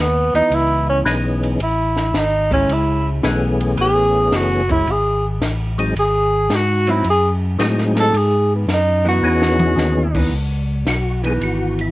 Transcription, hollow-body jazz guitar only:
0, 0, Header, 1, 2, 480
1, 0, Start_track
1, 0, Key_signature, 4, "minor"
1, 0, Tempo, 544959
1, 1410, Time_signature, 4, 2, 24, 8
1, 10490, End_track
2, 0, Start_track
2, 0, Title_t, "Hollow-body jazz guitar"
2, 0, Program_c, 0, 26
2, 306, Note_on_c, 0, 52, 63
2, 307, Note_on_c, 0, 59, 65
2, 312, Note_on_c, 0, 63, 67
2, 904, Note_off_c, 0, 52, 0
2, 905, Note_off_c, 0, 59, 0
2, 907, Note_off_c, 0, 63, 0
2, 2210, Note_on_c, 0, 56, 64
2, 2219, Note_on_c, 0, 61, 74
2, 2224, Note_on_c, 0, 64, 70
2, 2816, Note_off_c, 0, 56, 0
2, 2820, Note_off_c, 0, 61, 0
2, 2823, Note_off_c, 0, 64, 0
2, 4133, Note_on_c, 0, 56, 66
2, 4142, Note_on_c, 0, 61, 71
2, 4147, Note_on_c, 0, 64, 72
2, 4273, Note_off_c, 0, 56, 0
2, 4277, Note_off_c, 0, 61, 0
2, 4280, Note_off_c, 0, 64, 0
2, 6057, Note_on_c, 0, 54, 68
2, 6061, Note_on_c, 0, 60, 73
2, 6064, Note_on_c, 0, 63, 73
2, 6195, Note_off_c, 0, 54, 0
2, 6197, Note_off_c, 0, 60, 0
2, 6199, Note_off_c, 0, 63, 0
2, 7970, Note_on_c, 0, 52, 72
2, 7978, Note_on_c, 0, 59, 75
2, 7982, Note_on_c, 0, 63, 70
2, 8577, Note_off_c, 0, 52, 0
2, 8581, Note_off_c, 0, 59, 0
2, 8583, Note_off_c, 0, 63, 0
2, 8937, Note_on_c, 0, 52, 74
2, 8943, Note_on_c, 0, 59, 79
2, 8950, Note_on_c, 0, 63, 86
2, 9076, Note_off_c, 0, 52, 0
2, 9079, Note_off_c, 0, 59, 0
2, 9082, Note_off_c, 0, 63, 0
2, 9897, Note_on_c, 0, 52, 71
2, 9909, Note_on_c, 0, 59, 76
2, 9909, Note_on_c, 0, 63, 73
2, 10490, Note_off_c, 0, 52, 0
2, 10490, Note_off_c, 0, 59, 0
2, 10490, Note_off_c, 0, 63, 0
2, 10490, End_track
0, 0, End_of_file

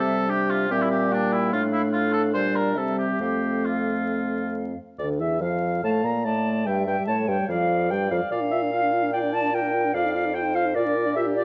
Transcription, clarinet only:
0, 0, Header, 1, 2, 480
1, 0, Start_track
1, 0, Key_signature, -1, "major"
1, 0, Tempo, 412655
1, 1773, Time_signature, 4, 2, 24, 8
1, 3215, Tempo, 446097
1, 5615, Key_signature, -1, "minor"
1, 5615, Tempo, 421053
1, 7055, Tempo, 408998
1, 13142, End_track
2, 0, Start_track
2, 0, Title_t, "Clarinet"
2, 0, Program_c, 0, 71
2, 0, Note_on_c, 0, 60, 51
2, 338, Note_on_c, 0, 62, 59
2, 356, Note_off_c, 0, 60, 0
2, 813, Note_off_c, 0, 62, 0
2, 820, Note_on_c, 0, 60, 51
2, 1298, Note_on_c, 0, 58, 58
2, 1315, Note_off_c, 0, 60, 0
2, 1784, Note_on_c, 0, 62, 55
2, 1801, Note_off_c, 0, 58, 0
2, 3236, Note_on_c, 0, 60, 45
2, 3252, Note_off_c, 0, 62, 0
2, 3692, Note_off_c, 0, 60, 0
2, 3699, Note_on_c, 0, 60, 43
2, 5350, Note_off_c, 0, 60, 0
2, 6573, Note_on_c, 0, 77, 50
2, 7019, Note_off_c, 0, 77, 0
2, 7050, Note_on_c, 0, 74, 47
2, 7539, Note_on_c, 0, 76, 52
2, 7557, Note_off_c, 0, 74, 0
2, 8033, Note_on_c, 0, 73, 51
2, 8050, Note_off_c, 0, 76, 0
2, 8523, Note_on_c, 0, 74, 50
2, 8541, Note_off_c, 0, 73, 0
2, 9459, Note_off_c, 0, 74, 0
2, 9466, Note_on_c, 0, 77, 61
2, 10411, Note_off_c, 0, 77, 0
2, 10430, Note_on_c, 0, 74, 59
2, 10899, Note_off_c, 0, 74, 0
2, 10916, Note_on_c, 0, 70, 55
2, 11377, Note_on_c, 0, 74, 62
2, 11394, Note_off_c, 0, 70, 0
2, 11853, Note_on_c, 0, 72, 57
2, 11871, Note_off_c, 0, 74, 0
2, 12336, Note_on_c, 0, 70, 62
2, 12354, Note_off_c, 0, 72, 0
2, 12813, Note_on_c, 0, 67, 66
2, 12831, Note_off_c, 0, 70, 0
2, 13142, Note_off_c, 0, 67, 0
2, 13142, End_track
0, 0, End_of_file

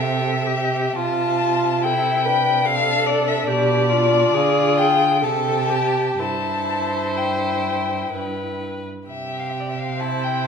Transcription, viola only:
0, 0, Header, 1, 2, 480
1, 0, Start_track
1, 0, Key_signature, 0, "major"
1, 0, Tempo, 998336
1, 466, Time_signature, 3, 2, 24, 8
1, 466, Tempo, 869565
1, 946, Tempo, 818554
1, 1906, Tempo, 875912
1, 2866, Tempo, 964630
1, 4786, Tempo, 909091
1, 5517, End_track
2, 0, Start_track
2, 0, Title_t, "Viola"
2, 0, Program_c, 0, 41
2, 0, Note_on_c, 0, 69, 80
2, 226, Note_on_c, 0, 67, 78
2, 234, Note_off_c, 0, 69, 0
2, 467, Note_on_c, 0, 65, 76
2, 475, Note_off_c, 0, 67, 0
2, 950, Note_on_c, 0, 69, 84
2, 959, Note_off_c, 0, 65, 0
2, 1186, Note_on_c, 0, 71, 76
2, 1195, Note_off_c, 0, 69, 0
2, 1423, Note_on_c, 0, 69, 90
2, 1432, Note_off_c, 0, 71, 0
2, 1901, Note_on_c, 0, 67, 84
2, 1910, Note_off_c, 0, 69, 0
2, 2135, Note_on_c, 0, 65, 83
2, 2144, Note_off_c, 0, 67, 0
2, 2378, Note_on_c, 0, 68, 94
2, 2386, Note_off_c, 0, 65, 0
2, 2863, Note_off_c, 0, 68, 0
2, 2866, Note_on_c, 0, 69, 86
2, 3099, Note_on_c, 0, 67, 73
2, 3106, Note_off_c, 0, 69, 0
2, 3345, Note_on_c, 0, 64, 76
2, 3352, Note_off_c, 0, 67, 0
2, 4548, Note_off_c, 0, 64, 0
2, 5266, Note_on_c, 0, 72, 63
2, 5517, Note_off_c, 0, 72, 0
2, 5517, End_track
0, 0, End_of_file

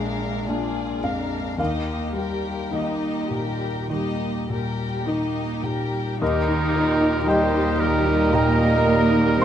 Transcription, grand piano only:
0, 0, Header, 1, 2, 480
1, 0, Start_track
1, 0, Key_signature, -3, "major"
1, 0, Tempo, 1102941
1, 692, Time_signature, 4, 2, 24, 8
1, 692, Tempo, 1153846
1, 2612, Tempo, 1063830
1, 4075, End_track
2, 0, Start_track
2, 0, Title_t, "Grand piano"
2, 0, Program_c, 0, 0
2, 0, Control_c, 0, 64, 127
2, 0, Note_on_c, 0, 34, 44
2, 0, Note_on_c, 0, 56, 30
2, 0, Note_on_c, 0, 79, 45
2, 211, Note_on_c, 0, 62, 37
2, 355, Note_off_c, 0, 56, 0
2, 429, Note_off_c, 0, 79, 0
2, 448, Note_on_c, 0, 41, 31
2, 451, Note_on_c, 0, 77, 45
2, 595, Note_off_c, 0, 62, 0
2, 676, Note_off_c, 0, 34, 0
2, 677, Note_off_c, 0, 77, 0
2, 687, Note_on_c, 0, 39, 35
2, 693, Note_off_c, 0, 41, 0
2, 694, Note_on_c, 0, 77, 45
2, 700, Control_c, 0, 64, 0
2, 767, Control_c, 0, 64, 127
2, 915, Note_on_c, 0, 55, 31
2, 1152, Note_off_c, 0, 77, 0
2, 1160, Note_on_c, 0, 63, 34
2, 1167, Note_on_c, 0, 75, 30
2, 1305, Note_off_c, 0, 55, 0
2, 1405, Note_on_c, 0, 46, 28
2, 1553, Note_off_c, 0, 63, 0
2, 1637, Note_off_c, 0, 39, 0
2, 1665, Note_on_c, 0, 55, 31
2, 1800, Note_off_c, 0, 46, 0
2, 1901, Note_on_c, 0, 46, 29
2, 2046, Note_off_c, 0, 55, 0
2, 2136, Note_on_c, 0, 63, 35
2, 2281, Note_off_c, 0, 46, 0
2, 2360, Note_off_c, 0, 75, 0
2, 2373, Note_on_c, 0, 46, 29
2, 2521, Note_off_c, 0, 63, 0
2, 2611, Note_off_c, 0, 46, 0
2, 2616, Note_on_c, 0, 75, 55
2, 2617, Note_on_c, 0, 39, 52
2, 2619, Note_on_c, 0, 63, 45
2, 2620, Note_on_c, 0, 70, 41
2, 2622, Control_c, 0, 64, 0
2, 2692, Control_c, 0, 64, 127
2, 2730, Note_off_c, 0, 63, 0
2, 2737, Note_on_c, 0, 63, 43
2, 2852, Note_off_c, 0, 70, 0
2, 2859, Note_on_c, 0, 70, 48
2, 2931, Note_off_c, 0, 63, 0
2, 2975, Note_on_c, 0, 63, 46
2, 3051, Note_off_c, 0, 70, 0
2, 3082, Note_off_c, 0, 75, 0
2, 3093, Note_on_c, 0, 55, 43
2, 3096, Note_on_c, 0, 79, 54
2, 3100, Note_on_c, 0, 67, 45
2, 3100, Note_on_c, 0, 75, 43
2, 3168, Note_off_c, 0, 63, 0
2, 3215, Note_on_c, 0, 63, 42
2, 3285, Note_off_c, 0, 55, 0
2, 3323, Note_on_c, 0, 70, 45
2, 3405, Note_off_c, 0, 63, 0
2, 3448, Note_on_c, 0, 63, 45
2, 3519, Note_off_c, 0, 70, 0
2, 3554, Note_off_c, 0, 79, 0
2, 3556, Note_off_c, 0, 67, 0
2, 3556, Note_off_c, 0, 75, 0
2, 3557, Note_off_c, 0, 39, 0
2, 3571, Note_on_c, 0, 82, 61
2, 3573, Note_on_c, 0, 46, 47
2, 3576, Note_on_c, 0, 70, 49
2, 3579, Note_on_c, 0, 79, 46
2, 3642, Note_off_c, 0, 63, 0
2, 3688, Note_on_c, 0, 63, 42
2, 3766, Note_off_c, 0, 46, 0
2, 3806, Note_off_c, 0, 70, 0
2, 3813, Note_on_c, 0, 70, 46
2, 3884, Note_off_c, 0, 63, 0
2, 3924, Note_on_c, 0, 63, 41
2, 4006, Note_off_c, 0, 70, 0
2, 4035, Note_off_c, 0, 82, 0
2, 4039, Note_off_c, 0, 79, 0
2, 4042, Note_on_c, 0, 55, 47
2, 4061, Note_on_c, 0, 84, 60
2, 4075, Note_off_c, 0, 55, 0
2, 4075, Note_off_c, 0, 63, 0
2, 4075, Note_off_c, 0, 84, 0
2, 4075, End_track
0, 0, End_of_file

